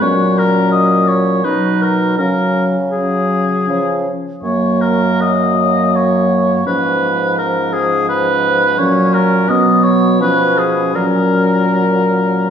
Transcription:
0.01 A#2 F#3 C#4 C#5
0.38 A#4
0.72 D#5
1.08 C#5
1.44 B2 F#3 D#4 B4
1.81 A#4
2.18 C#3 F#3 C#4 A#4
2.91 F#3 C#4 G#4
3.67 C#3 F3 C#4
4.43 F#2 F#3 A#3 C#5
4.81 A#4
5.21 D#5
5.95 C#5
6.66 G#2 F3 C#4 B4
7.38 A#4
7.73 G#4
8.09 B4
8.78 A#2 F#3 C#4 C#5
9.13 A#4
9.49 B2 F#3 B3 D#5
9.83 C#5
10.20 F3 C#4 B4
10.58 G#4
10.95 A#2 F#3 C#4 A#4

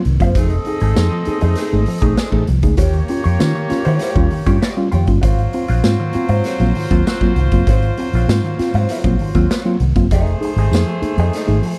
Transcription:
0.05 C2 G#2 D#3, closed hi-hat
0.20 F#1 F#3 A#3 C4 F4 F#4 C5 F5, kick, closed hi-hat
0.35 F1 F3 A3 C4 D#4 G#4 A4 D#5, kick, closed hi-hat
0.50 closed hi-hat
0.65 D#4 G#4, muted hollow-body jazz guitar stroke, closed hi-hat
0.80 G#1 A3 D#4 G#4, closed hi-hat
0.96 F2 D#4 G#4, snare, tambourine
1.12 F3, muted hollow-body jazz guitar stroke
1.25 D#4 G#4, muted fingered electric bass stroke, closed hi-hat
1.41 F2 A3 D#4 G#4, closed hi-hat
1.55 A3 D#4 G#4, snare, closed hi-hat
1.73 G#1 A3 D#4 G#4
1.86 F3, muted hollow-body jazz guitar stroke, open hi-hat
2.01 A#1 A3 D#4 G#4, kick, closed hi-hat
2.17 G#3 D4 G#4, snare, tambourine
2.29 A1 A3 D#4 A4, kick
2.33 D#4 G#4
2.47 C2 F3, muted hollow-body jazz guitar stroke, closed hi-hat
2.62 C#2 A3 D#4 G#4, muted hollow-body jazz guitar stroke, kick, closed hi-hat
2.77 D#2 D#3 A#3 F4 G4 C#5, kick, closed hi-hat
2.93 closed hi-hat
3.08 C#4 F4, muted hollow-body jazz guitar stroke, closed hi-hat
3.24 F2 F4 G4 C#5, closed hi-hat
3.39 D#3 C#4 F4, muted hollow-body jazz guitar stroke, snare, tambourine
3.55 D#3, muted hollow-body jazz guitar stroke, closed hi-hat
3.70 C#4 F4, muted fingered electric bass stroke, snare, closed hi-hat
3.85 D#3 F4 G4 C#5, closed hi-hat
3.99 F4 G4 C#5, snare, closed hi-hat
4.16 D#2 G3 C#4 F4, kick
4.30 D#3, muted hollow-body jazz guitar stroke, open hi-hat
4.46 G2 G3 C#4 F4 G4 C#5, kick, closed hi-hat
4.62 F4 G4 D#5, snare, tambourine
4.77 G3 C#4 F4, muted hollow-body jazz guitar stroke, closed hi-hat
4.92 F2 D#3 F4 G4 C#5, closed hi-hat
5.07 G1 G3 C#4 F4, muted hollow-body jazz guitar stroke, kick, closed hi-hat
5.22 G#1 G#2 D#3 F#3 C4 F4 C5, kick, closed hi-hat
5.39 closed hi-hat
5.53 C4 F4, muted hollow-body jazz guitar stroke, closed hi-hat
5.68 A#1 F#3 C4 F4, closed hi-hat
5.84 G#2 C4 F4, muted hollow-body jazz guitar stroke, snare, tambourine
6.00 G#2 D#3, muted hollow-body jazz guitar stroke
6.13 C4 F4, muted fingered electric bass stroke, closed hi-hat
6.28 G#2 F#3 C4 F4, closed hi-hat
6.44 F#3 C4 F4, snare, closed hi-hat
6.60 A#1 F#3 A#3 C4 F4, closed hi-hat
6.75 G#2 D#3, muted hollow-body jazz guitar stroke, open hi-hat
6.90 D#2 F#3 A#3 C4 F4, kick, closed hi-hat
7.06 F#3 C4 F#4, snare, tambourine
7.21 F#3 A#3 C4 F4, kick, closed hi-hat
7.36 C2 G#2 D#3, muted hollow-body jazz guitar stroke, closed hi-hat
7.51 F#1 F#3 A#3 C4 F4, muted hollow-body jazz guitar stroke, kick, closed hi-hat
7.67 G#1 G#2 D#3 F#3 C4 F4, kick, closed hi-hat
7.82 closed hi-hat
7.97 C4 F4, muted hollow-body jazz guitar stroke, closed hi-hat
8.13 A#1 F#3 C4 F4, closed hi-hat
8.28 G#2 C4 F4, muted hollow-body jazz guitar stroke, snare, tambourine
8.44 G#2 D#3, muted hollow-body jazz guitar stroke, closed hi-hat
8.59 C4 F4, muted fingered electric bass stroke, snare, closed hi-hat
8.74 G#2 F#3 C4 F4, closed hi-hat
8.89 F#3 C4 F4, closed hi-hat
9.04 A#1 F#3 A#3 C4 F4, kick, closed hi-hat
9.19 G#2 D#3, muted hollow-body jazz guitar stroke, open hi-hat
9.35 D#2 F#3 A#3 C4 F4, kick, closed hi-hat
9.50 F3 B3 F4, snare, tambourine
9.62 F#3 A#3 C4 F#4, closed hi-hat
9.66 F4
9.80 C2 G#2 D#3, muted hollow-body jazz guitar stroke, closed hi-hat
9.96 F#1 F#3 A#3 C4 F4, muted hollow-body jazz guitar stroke, kick, closed hi-hat
10.11 F1 F3 A3 D#4 G#4 C5, kick, closed hi-hat
10.27 closed hi-hat
10.41 D#4 G#4, muted hollow-body jazz guitar stroke, closed hi-hat
10.56 G#1 D#4 G#4, closed hi-hat
10.60 A3
10.71 F2 D#4 G#4, muted hollow-body jazz guitar stroke, snare, tambourine
10.87 F3, muted hollow-body jazz guitar stroke, closed hi-hat
11.02 D#4 G#4, muted fingered electric bass stroke, closed hi-hat
11.18 F2 A3 D#4 G#4, closed hi-hat
11.33 A3 D#4 G#4, snare, closed hi-hat
11.47 G#1 A3 D#4 G#4, closed hi-hat
11.62 F3, muted hollow-body jazz guitar stroke, open hi-hat

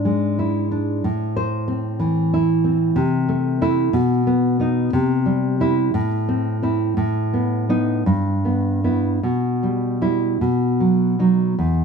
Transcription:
Already playing: G#2 D4
0.05 G#3
0.39 E4
0.71 D4
1.04 A2
1.36 C5
1.68 C4
2.00 E3
2.34 E4
2.64 C4
2.96 C3
3.29 A3
3.62 A3 E4
3.93 B2
4.27 B3
4.59 B3 D#4
4.93 C3
5.26 G3
5.60 G3 E4
5.94 A2
6.29 C4
6.63 C4 E4
6.97 A2
7.34 B3
7.69 B3 D#4
8.06 G2
8.45 B3
8.84 B3 E4
9.23 B2
9.63 G3
10.02 G3 E4
10.41 B2
10.80 F#3
11.19 F#3 D#4
11.59 E2

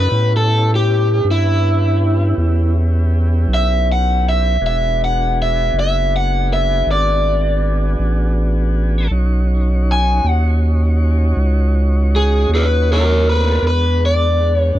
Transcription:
0.00 B4
0.08 A2 B3 C#4 E4 G4
0.37 A4
0.75 G4
1.25 G2
1.31 E4
2.38 E2
3.48 B1
3.54 E5
3.92 F#5
4.29 E5
4.61 E1 B3 D4 F#4 G#4
4.67 E5
5.04 F#5
5.42 E5
5.73 F#1
5.80 E5
6.16 F#5
6.54 E5
6.86 G#1
6.91 D5
7.99 A1
9.11 B1 C#4 D#4 F#4 C#5
9.92 G#5
10.24 D#2
10.29 F#5
11.37 C#2
12.16 G#4
12.49 D#2
12.55 G#4 B4
12.93 A#4 C#5
13.29 A3 B4
13.36 B3 C4
13.41 D4 E4
13.46 F4 G4
13.51 A4 B4
13.57 C5 D5
13.62 E2 G#3 B3 D4 F#5
13.67 B4
14.06 D5
14.58 C#5
14.75 F#2

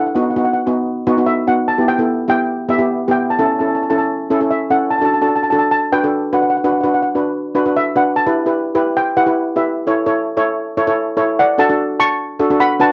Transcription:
0.07 F#5
0.15 B3 D#4 F#4 F#5
0.23 F#5
0.30 F#5
0.36 B3 D#4 F#4 F#5
0.44 F#5
0.53 F#5
0.66 B3 D#4 F#4
1.07 B3 D#4 F#4
1.18 B3 D#4 F#4
1.26 E5
1.47 B3 D#4 F#4 F#5
1.68 A5
1.78 B3 E4 G4
1.88 G5
1.98 B3 E4 A4
2.28 B3 E4 G4 G5
2.69 B3 E4 G4 E5
2.78 B3 E4 G4
3.08 B3 E4 G4 G5
3.30 A5
3.39 C#4 E4 A4 A5
3.45 A5
3.52 A5
3.59 C#4 E4 A4 A5
3.67 A5
3.75 A5
3.83 A5
3.90 C#4 E4 A4 A5
3.98 A5
4.31 C#4 E4 A4
4.41 C#4 E4 A4
4.51 E5
4.70 C#4 E4 A4 F#5
4.90 A5
4.98 D4 F#4 A4 A5
5.05 A5
5.14 A5
5.21 D4 F#4 A4 A5
5.28 A5
5.36 A5
5.43 A5
5.50 D4 F#4 A4 A5
5.59 A5
5.71 A5
5.92 D4 F#4 B4 G5
6.03 D4 F#4 A4
6.33 D4 F#4 B4 F#5
6.42 F#5
6.50 F#5
6.57 F#5
6.64 D4 F#4 B4 F#5
6.72 F#5
6.81 D4 F#4 B4 F#5
6.87 F#5
6.94 F#5
7.02 F#5
7.15 D4 F#4 B4
7.55 D4 F#4 B4
7.66 D4 F#4 B4
7.76 E5
7.96 D4 F#4 B4 F#5
8.16 A5
8.26 E4 G4 B4
8.46 E4 G4 B4
8.75 E4 G4 B4
8.97 G5
9.17 E4 G4 B4 F#5
9.26 E4 G4 B4
9.56 E4 G4 B4 E5
9.87 E4 A4 C#5
10.06 E4 A4 C#5
10.37 E4 A4 C#5
10.77 E4 A4 C#5
10.87 E4 A4 C#5
11.17 E4 A4 C#5
11.39 D5 F#5
11.58 D4 F#4 A4 F#5 A5
11.69 D4 F#4 A4
12.00 A5 C#6
12.39 D4 F#4 A4
12.50 D4 F#4 A4
12.60 F#5 B5
12.80 D4 F#4 B4 F#5 A5

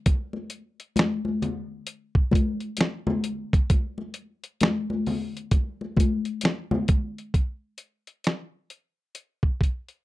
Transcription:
0.06 kick, closed hi-hat, muted conga
0.33 muted conga
0.50 closed hi-hat
0.80 closed hi-hat
0.96 finger snap, snare, closed hi-hat, muted conga, high conga
1.25 muted conga, high conga
1.42 closed hi-hat, low conga
1.87 closed hi-hat
2.15 kick
2.31 kick, closed hi-hat, high conga
2.60 closed hi-hat
2.77 finger snap, snare, closed hi-hat, muted conga
3.07 muted conga, high conga, low conga
3.24 closed hi-hat
3.53 kick, closed hi-hat
3.70 kick, closed hi-hat, muted conga
3.98 muted conga
4.14 closed hi-hat
4.44 closed hi-hat
4.61 finger snap, snare, closed hi-hat, muted conga, high conga
4.90 muted conga, high conga
5.06 open hi-hat, low conga
5.37 closed hi-hat
5.51 kick, closed hi-hat, muted conga
5.81 muted conga
5.97 kick, closed hi-hat, high conga
6.25 closed hi-hat
6.41 finger snap, snare, closed hi-hat, muted conga
6.71 muted conga, high conga, low conga
6.88 kick, closed hi-hat
7.18 closed hi-hat
7.34 kick, closed hi-hat
7.78 closed hi-hat
8.07 closed hi-hat
8.24 finger snap, snare, closed hi-hat
8.70 closed hi-hat
9.15 closed hi-hat
9.43 kick
9.61 kick, closed hi-hat
9.88 closed hi-hat

